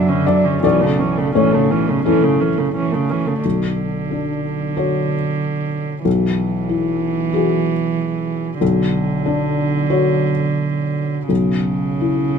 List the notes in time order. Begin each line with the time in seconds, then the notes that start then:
Already playing: B1 F#2 C#3 F#3 F#4 B4 E5 F#5
0.08 D3 C#4
0.26 F#3 D4 D5
0.45 D3 C#4
0.63 B1 E3 C#4 D5
0.81 C#3 A3
0.99 E3 C#4
1.18 C#3 A3
1.35 A2 E3 C#4 C#5
1.53 C#3 A3
1.70 E3 C#4
1.88 C#3 A3
2.05 E3 C#4 E4 A4
2.23 C#3 A3
2.40 E3 C#4
2.57 C#3 A3
2.75 E3 C#4
2.92 C#3 A3
3.10 E3 C#4
3.26 C#3 A3
3.44 B1 D3
4.11 D4
4.77 F#4 C#5
6.05 B1 E3
6.69 E4
7.33 F#4 G#4
8.61 B1 D3
9.26 D4
9.90 F#4 C#5
11.29 B1 C#3
12.01 E4